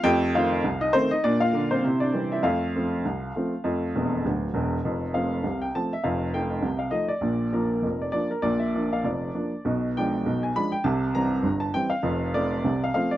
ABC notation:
X:1
M:2/4
L:1/16
Q:"Swing 16ths" 1/4=100
K:F
V:1 name="Upright piano"
[Gg]2 [Ff]3 [_E_e] [Cc] [Ee] | [Dd] [Ff]2 [Cc]2 [Dd]2 [Ee] | [Ff]8- | [Ff]6 z2 |
z2 f3 g a e | f2 g3 f _e d- | d2 B3 d d B | d e2 f d4 |
z2 g3 ^g =b =g | a2 b3 a g f- | f2 d3 f f d |]
V:2 name="Upright piano" clef=bass
[F,,A,]2 [_E,A,C]2 C,,2 [E,A,]2 | B,,2 [D,B,D]2 [C,E]2 [E,G,C]2 | [F,,A,]2 [F,A,C]2 C,,2 [F,A,C]2 | [F,,A,]2 [E,,,E,,]2 [D,,,D,,]2 [E,,,E,,]2 |
[F,,,F,,]2 [F,A,C]2 [C,,C,]2 [F,A,C]2 | [F,,,F,,]2 [F,A,_E]2 [C,,C,]2 [F,A,E]2 | [B,,,B,,]2 [F,B,D]2 [F,,,F,,]2 [F,B,D]2 | [B,,,B,,]2 [F,B,D]2 [F,,,F,,]2 [F,B,D]2 |
[=B,,,=B,,]2 [F,^G,D]2 [B,,,B,,]2 [F,G,D]2 | [C,,C,]2 [E,G,C]2 [G,,,G,,]2 [E,G,C]2 | [F,,,F,,]2 [F,A,C]2 [C,,C,]2 [F,A,C]2 |]